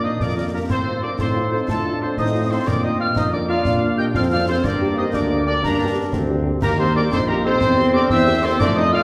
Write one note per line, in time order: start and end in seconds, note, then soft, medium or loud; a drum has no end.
0.00 0.12 A#2 medium
0.00 0.09 A#3 medium
0.00 0.17 D4 medium
0.00 0.10 D4 medium
0.00 0.22 D#4 medium
0.00 0.09 F4 medium
0.00 0.20 C5 medium
0.00 0.11 D#5 loud
0.04 0.23 D#6 loud
0.20 0.61 F2 medium
0.20 0.66 A#3 medium
0.20 0.36 D4 medium
0.20 0.29 A#4 medium
0.20 0.36 D5 medium
0.20 0.37 D6 loud
0.20 concert bass drum medium
0.20 snare medium
0.37 0.43 A#3 medium
0.37 0.44 D4 medium
0.37 0.43 D4 medium
0.37 0.43 F4 medium
0.37 0.52 A#4 medium
0.37 0.45 D5 medium
0.37 0.44 D6 medium
0.53 0.68 A#3 medium
0.53 0.60 A#3 medium
0.53 0.60 D4 medium
0.53 0.59 F4 medium
0.53 0.70 G4 medium
0.53 0.61 A#4 medium
0.53 0.60 A#5 medium
0.69 1.07 A2 medium
0.69 1.00 C4 medium
0.69 1.19 C4 medium
0.69 1.03 A4 medium
0.69 1.01 C5 loud
0.69 1.05 C6 medium
0.69 concert bass drum medium
0.69 snare medium
0.69 crash soft
0.87 0.93 C4 medium
0.87 0.93 D#4 medium
0.87 0.93 F4 medium
1.03 1.09 C4 medium
1.03 1.11 D4 medium
1.03 1.09 D#4 medium
1.03 1.09 F4 medium
1.03 1.19 A#4 medium
1.03 1.10 D5 loud
1.03 1.20 D6 loud
1.18 1.60 A2 medium
1.18 1.51 C4 medium
1.18 1.65 D#4 medium
1.18 1.50 A4 medium
1.18 1.50 C5 loud
1.18 1.50 C6 medium
1.18 concert bass drum medium
1.18 snare medium
1.36 1.42 C4 medium
1.36 1.42 D#4 medium
1.36 1.42 F4 medium
1.52 1.58 C4 medium
1.52 1.68 C4 medium
1.52 1.58 D#4 medium
1.52 1.58 F4 medium
1.52 1.68 A4 medium
1.52 1.67 C5 loud
1.52 1.60 C6 medium
1.68 2.10 A2 medium
1.68 2.00 A3 medium
1.68 2.18 D4 medium
1.68 2.00 F4 medium
1.68 1.99 A4 loud
1.68 2.00 A5 medium
1.68 concert bass drum medium
1.68 snare medium
1.86 1.91 C4 medium
1.86 1.91 D#4 medium
1.86 1.92 F4 medium
2.02 2.08 C4 medium
2.02 2.18 C4 medium
2.02 2.08 D#4 medium
2.02 2.08 F4 medium
2.02 2.18 A4 medium
2.02 2.18 C5 loud
2.02 2.08 C6 medium
2.17 2.59 A2 loud
2.17 3.17 C4 loud
2.17 2.49 D#4 loud
2.17 2.49 C5 medium
2.17 2.49 D#5 loud
2.17 2.52 D#6 loud
2.17 concert bass drum medium
2.17 snare medium
2.34 2.40 C4 medium
2.34 2.40 D#4 medium
2.34 2.40 F4 medium
2.51 2.66 C4 medium
2.51 2.57 C4 medium
2.51 2.57 D#4 medium
2.51 2.57 F4 medium
2.51 2.66 A4 medium
2.51 2.66 C5 loud
2.51 2.68 C6 medium
2.67 3.08 A#2 medium
2.67 2.82 D4 loud
2.67 2.75 A#4 loud
2.67 2.84 D5 loud
2.67 2.85 D6 loud
2.67 concert bass drum loud
2.67 snare medium
2.67 crash soft
2.83 2.90 A#3 medium
2.83 2.90 D4 medium
2.83 2.98 D#4 medium
2.83 2.90 F4 medium
2.83 2.91 C5 medium
2.83 2.99 D#5 loud
2.83 3.00 D#6 medium
3.00 3.06 A#3 medium
3.00 3.06 D4 medium
3.00 3.15 F4 medium
3.00 3.06 F4 medium
3.00 3.07 D5 medium
3.00 3.08 F5 loud
3.00 3.19 F6 loud
3.16 3.58 F2 medium
3.16 3.66 A#3 medium
3.16 3.32 D#4 loud
3.16 3.24 C5 medium
3.16 3.32 D#5 loud
3.16 3.32 D#6 loud
3.16 concert bass drum medium
3.16 snare medium
3.32 3.39 A#3 medium
3.32 3.48 D4 medium
3.32 3.39 D4 medium
3.32 3.39 F4 medium
3.32 3.41 A#4 medium
3.32 3.40 D5 medium
3.32 3.48 D6 loud
3.49 3.56 A#3 medium
3.49 3.56 D4 medium
3.49 3.84 F4 loud
3.49 3.56 F4 medium
3.49 3.85 D5 loud
3.49 3.95 F5 loud
3.49 3.76 F6 loud
3.65 4.07 A#2 medium
3.65 4.12 D4 medium
3.65 concert bass drum medium
3.65 snare medium
3.83 3.89 A#3 medium
3.83 3.89 D4 medium
3.83 3.89 F4 medium
3.98 4.05 A#3 medium
3.98 4.05 D4 medium
3.98 4.05 F4 medium
3.98 4.05 G4 medium
3.98 4.06 D#5 loud
3.98 4.06 G5 loud
3.98 4.04 G6 loud
4.14 4.56 F2 loud
4.14 4.61 C4 loud
4.14 4.30 F4 loud
4.14 4.22 D5 loud
4.14 4.22 F5 loud
4.14 4.22 F6 loud
4.14 concert bass drum medium
4.14 snare medium
4.31 4.39 A#3 medium
4.31 4.39 D4 medium
4.31 4.47 F4 medium
4.31 4.38 F4 medium
4.31 4.40 D5 loud
4.31 4.47 F5 loud
4.31 4.47 F6 loud
4.48 4.54 A#3 medium
4.48 4.63 C4 loud
4.48 4.54 D4 medium
4.48 4.54 F4 medium
4.48 4.64 A4 medium
4.48 4.64 C5 loud
4.48 4.55 C6 loud
4.64 5.05 G2 medium
4.64 5.46 A#3 loud
4.64 4.95 D4 medium
4.64 4.96 A#4 medium
4.64 4.97 D5 loud
4.64 4.96 D6 medium
4.64 concert bass drum loud
4.64 snare medium
4.64 crash soft
4.81 4.87 A#3 medium
4.81 4.87 D4 medium
4.81 4.87 G4 medium
4.97 5.03 A#3 medium
4.97 5.03 D4 medium
4.97 5.05 D#4 loud
4.97 5.03 G4 medium
4.97 5.13 C5 loud
4.97 5.13 D#5 loud
4.97 5.04 D#6 loud
5.13 5.55 D2 medium
5.13 5.45 D4 loud
5.13 5.45 A#4 loud
5.13 5.46 D5 loud
5.13 5.45 D6 loud
5.13 concert bass drum medium
5.13 snare medium
5.30 5.36 A#3 medium
5.30 5.36 D4 medium
5.30 5.36 G4 medium
5.46 5.53 A#3 medium
5.46 5.62 D4 loud
5.46 5.53 D4 medium
5.46 5.53 G4 medium
5.46 5.63 A#4 medium
5.46 5.62 D5 loud
5.46 5.53 D6 loud
5.63 6.05 G2 medium
5.63 5.94 A#3 medium
5.63 6.09 D4 loud
5.63 5.96 G4 medium
5.63 5.95 A#4 loud
5.63 5.95 A#5 loud
5.63 concert bass drum medium
5.63 snare medium
5.80 5.86 A#3 medium
5.80 5.86 D4 medium
5.80 5.86 G4 medium
5.96 6.02 A#3 medium
5.96 6.02 D4 medium
5.96 6.02 G4 medium
6.13 6.54 D2 loud
6.13 6.62 C4 loud
6.13 concert bass drum loud
6.13 snare medium
6.29 6.35 A#3 medium
6.29 6.35 D4 medium
6.29 6.35 G4 medium
6.45 6.51 A#3 medium
6.45 6.51 D4 medium
6.45 6.51 G4 medium
6.62 7.04 D#2 loud
6.62 7.08 A#3 loud
6.62 6.70 A#3 loud
6.62 6.70 G4 loud
6.62 6.78 A#4 loud
6.62 6.68 A#5 loud
6.62 concert bass drum loud
6.62 snare medium
6.62 crash medium
6.77 6.84 A#3 medium
6.77 6.87 C4 loud
6.77 6.84 D#4 medium
6.77 6.84 G4 medium
6.77 6.87 A4 medium
6.77 6.94 C5 loud
6.77 6.94 C6 loud
6.95 7.01 A#3 medium
6.95 7.04 D4 loud
6.95 7.01 D#4 medium
6.95 7.01 G4 medium
6.95 7.03 A#4 loud
6.95 7.03 D5 loud
6.95 7.11 D6 loud
7.12 7.53 A#1 loud
7.12 7.20 C4 loud
7.12 7.58 D#4 loud
7.12 7.20 A4 loud
7.12 7.20 C5 loud
7.12 7.30 C6 loud
7.12 concert bass drum medium
7.12 snare medium
7.28 7.34 A#3 medium
7.28 7.44 A#3 loud
7.28 7.34 D#4 medium
7.28 7.35 G4 loud
7.28 7.34 G4 medium
7.28 7.36 A#4 loud
7.28 7.46 A#5 loud
7.44 7.50 A#3 medium
7.44 7.97 C4 loud
7.44 7.50 D#4 medium
7.44 7.50 G4 medium
7.44 7.91 A4 loud
7.44 7.91 C5 loud
7.44 7.95 C6 loud
7.61 8.02 E2 loud
7.61 8.56 C4 loud
7.61 concert bass drum loud
7.61 snare medium
7.76 7.83 A#3 medium
7.76 7.83 C4 loud
7.76 7.83 G4 medium
7.93 7.99 A#3 medium
7.93 8.00 C4 medium
7.93 8.12 D4 loud
7.93 7.99 G4 medium
7.93 8.11 A#4 loud
7.93 8.03 D5 loud
7.93 8.09 D6 loud
8.10 8.52 E2 loud
8.10 8.44 E4 loud
8.10 8.41 C5 loud
8.10 8.42 E5 loud
8.10 8.45 E6 loud
8.10 concert bass drum medium
8.10 snare medium
8.26 8.33 A#3 loud
8.26 8.32 C4 medium
8.26 8.33 G4 medium
8.43 8.50 A#3 loud
8.43 8.50 C4 medium
8.43 8.52 C4 loud
8.43 8.50 G4 medium
8.43 8.59 A4 loud
8.43 8.61 C5 loud
8.43 8.59 C6 loud
8.59 8.97 F2 loud
8.59 9.03 A3 loud
8.59 8.67 D4 loud
8.59 8.68 A#4 loud
8.59 8.76 D5 loud
8.59 8.65 D6 loud
8.59 concert bass drum loud
8.59 snare medium
8.59 crash soft
8.76 8.82 A3 loud
8.76 8.82 C4 medium
8.76 8.82 D#4 loud
8.76 8.84 D#4 loud
8.76 8.84 C5 loud
8.76 8.93 D#5 loud
8.76 8.94 D#6 loud
8.92 8.99 A3 medium
8.92 8.98 C4 medium
8.92 8.99 D#4 medium
8.92 9.03 F4 loud
8.92 9.03 D5 loud
8.92 9.01 F5 loud
8.92 9.03 F6 loud